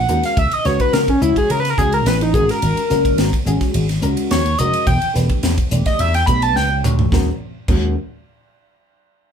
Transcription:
Already playing: F#5
0.08 D#2 G#3 C#4 F#4 A#4, hi-hat pedal
0.23 F5, snare, ride
0.37 C#2 E5, kick, ride
0.51 D#5, muted slap bass stroke, ride
0.64 C#2 G#3 C#4 F#4 B4 C#5, snare, hi-hat pedal
0.80 B4, kick, ride
0.93 C#3 A#4, snare, ride
1.08 C#4, muted slap bass stroke, kick, ride
1.21 C#2 G#3 C#4 E4 F#4 C#5, hi-hat pedal
1.36 G#4, kick, ride
1.50 C#3 A#4, ride
1.60 B4
1.65 snare, ride
1.70 A#4
1.77 C#2 G#3 C#4 F#4 G#4, kick, hi-hat pedal
1.92 A#4, ride
2.06 A1 B4, snare, ride
2.21 D#4, ride
2.33 G#1 G#3 C#4 F#4 G#4 A#4, kick, hi-hat pedal
2.49 A#4, snare, ride
2.62 G#1, ride
2.77 ride
2.89 F#1 G#3 C#4 F#4 A#4, snare, hi-hat pedal
3.05 kick, ride
3.18 G#1, snare, ride
3.33 kick, ride
3.45 G#1 G#3 C#4 F#4 G#4, hi-hat pedal
3.61 kick, snare, ride
3.74 G#1, ride
3.89 snare, ride
4.01 C#2 G#3 C#4 F#4 A#4, hi-hat pedal
4.17 ride
4.31 D#2 C#5, snare, ride
4.46 ride
4.58 F1 G#3 C#4 F#4 A#4 D#5, hi-hat pedal
4.74 ride
4.87 E1 G5, kick, ride
5.02 ride
5.14 E1 A3 D4 G4 B4, snare, hi-hat pedal
5.29 kick, ride
5.43 E2, snare, ride
5.58 muted slap bass stroke, kick, ride
5.71 E1 A3 D4 G4 D5, hi-hat pedal
5.86 D#5, kick, snare, ride
5.99 E2 E5, ride
6.14 G5, snare, ride
6.26 B1 A3 D4 G4 B4 B5, kick, hi-hat pedal
6.42 A5, ride
6.56 C#2 G5, snare
6.83 D2 A3 D4 G4 C#5, hi-hat pedal, mid tom
6.99 floor tom
7.12 D#2 G#3 C#4 F#4 A#4, kick, snare
7.68 D#2 G#3 C#4 F#4 A#4, kick, crash

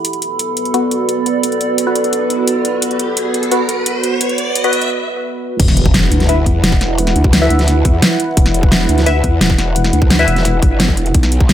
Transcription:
Already playing: E5 B5
0.05 B3 F#4 A4 B4, closed hi-hat, riser
0.13 closed hi-hat
0.22 closed hi-hat
0.39 D5, closed hi-hat
0.57 closed hi-hat
0.65 closed hi-hat
0.74 B3 F#4 B4, closed hi-hat
0.91 closed hi-hat
1.09 closed hi-hat
1.26 closed hi-hat
1.43 closed hi-hat
1.52 closed hi-hat
1.61 closed hi-hat
1.78 closed hi-hat
1.87 B3 F#4 B4
1.96 closed hi-hat
2.04 closed hi-hat
2.13 closed hi-hat
2.30 closed hi-hat
2.47 closed hi-hat
2.65 closed hi-hat
2.82 closed hi-hat
2.91 closed hi-hat
2.99 closed hi-hat
3.17 closed hi-hat
3.34 closed hi-hat
3.43 closed hi-hat
3.52 B3 F#4 B4, closed hi-hat
3.69 closed hi-hat
3.86 closed hi-hat
4.03 closed hi-hat
4.21 closed hi-hat
4.29 closed hi-hat
4.38 closed hi-hat
4.55 closed hi-hat
4.64 B3 F#4 B4, closed hi-hat
4.73 closed hi-hat
4.82 closed hi-hat
5.60 E1 E4 B4 F#5, kick, closed hi-hat, crash, impact
5.68 snare, closed hi-hat
5.77 closed hi-hat
5.86 kick
5.94 snare, closed hi-hat
6.12 D2, closed hi-hat
6.20 snare, closed hi-hat
6.29 E4 B4 E5, closed hi-hat
6.46 E2, kick, closed hi-hat
6.64 E1, snare, closed hi-hat
6.72 kick
6.81 snare, closed hi-hat
6.98 closed hi-hat
7.07 snare, closed hi-hat
7.16 D2, closed hi-hat
7.24 kick
7.33 snare, closed hi-hat
7.42 E4 B4 E5
7.50 D2, closed hi-hat
7.59 snare, closed hi-hat
7.68 snare, closed hi-hat
7.85 E2, kick, closed hi-hat
8.02 snare, closed hi-hat
8.20 closed hi-hat
8.37 E1, kick, closed hi-hat
8.46 snare, closed hi-hat
8.54 closed hi-hat
8.63 kick
8.72 snare, closed hi-hat
8.89 D2, closed hi-hat
8.98 snare, closed hi-hat
9.06 E4 B4 E5, closed hi-hat
9.24 E2, kick, closed hi-hat
9.41 E1, snare, closed hi-hat
9.50 kick
9.58 snare, closed hi-hat
9.76 closed hi-hat
9.84 snare, closed hi-hat
9.93 D2, closed hi-hat
10.02 kick
10.10 snare, closed hi-hat
10.19 E4 B4 E5, closed hi-hat
10.28 E1, closed hi-hat
10.36 snare, closed hi-hat
10.45 snare, closed hi-hat
10.62 G1, kick, closed hi-hat
10.80 snare, closed hi-hat
10.88 kick
10.97 E1, closed hi-hat
11.06 closed hi-hat
11.14 B1 B3 F#4 B4, kick, closed hi-hat
11.23 snare, closed hi-hat
11.32 closed hi-hat
11.41 kick
11.49 snare, closed hi-hat

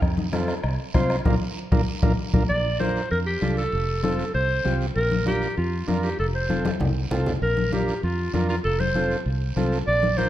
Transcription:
0.02 F2, bombo low, bombo rim, long guiro
0.18 high conga
0.32 C4 F4 A4, bombo rim, high conga, short guiro
0.48 bombo rim, short guiro
0.64 C2, bombo rim, long guiro
0.94 C2 C4 F4 C5, bombo low, bombo rim, high conga, short guiro
1.10 bombo rim, short guiro
1.25 A#1 D4 F4 A#4, bombo low, high conga, long guiro
1.72 A#1 D4 F4 A#4, bombo low, high conga, long guiro
2.02 A#1 D4 F4 A#4, bombo low, high conga, long guiro
2.33 A#1 D4 F4 A#4, bombo low, high conga, long guiro
2.49 A#1 D5, long guiro
2.79 D4 F4 A#4 C5, high conga, short guiro
2.96 short guiro
3.11 F2 A#4, long guiro
3.26 G4
3.41 C2 D4 F4 A4, high conga, short guiro
3.57 A4, short guiro
3.72 F1, long guiro
4.03 C4 F4 A4, high conga, short guiro
4.19 short guiro
4.34 C2 C5, long guiro
4.65 C2 C4 F4 G4, high conga, short guiro
4.81 short guiro
4.96 A#1 A#4, long guiro
5.11 high conga
5.26 D4 F4 G4 A#4, high conga, short guiro
5.42 short guiro
5.57 F2 F4, long guiro
5.87 F2 D4 F4 A#4, high conga, short guiro
6.03 G4, short guiro
6.19 F1 A4, long guiro
6.35 C5
6.49 C4 F4 A4, high conga, short guiro
6.65 high conga, short guiro
6.80 C2, low conga, long guiro
7.11 C2 C4 F4 A4, low conga, short guiro
7.26 low conga, short guiro
7.42 A#1 A#4, long guiro
7.57 high conga
7.72 D4 F4 G4 A#4, high conga, short guiro
7.88 short guiro
8.03 F2 F4, long guiro
8.33 F2 D4 F4 A#4, high conga, short guiro
8.49 F4, short guiro
8.64 F1 A4, long guiro
8.80 C5, high conga
8.95 C4 F4 A4, high conga, short guiro
9.10 short guiro
9.26 C2, long guiro
9.56 C2 C4 F4 A4, high conga, short guiro
9.72 short guiro
9.87 A#1 D5, long guiro
10.03 high conga
10.17 D4 F4 A#4 C5, high conga, short guiro

